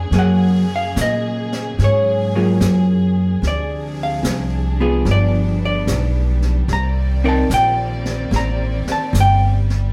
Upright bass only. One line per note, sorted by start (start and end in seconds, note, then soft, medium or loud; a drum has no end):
0.11 0.92 F#2 medium
0.96 1.76 A#2 medium
1.79 2.58 G#2 medium
2.60 3.40 F#2 medium
3.42 4.21 D2 medium
4.23 5.03 C2 medium
5.05 5.84 G1 medium
5.87 6.66 B1 medium
6.68 7.47 C2 medium
7.50 8.29 A#1 medium
8.31 8.83 A1 medium
8.87 muted upright bass stroke soft
9.13 9.93 G1 medium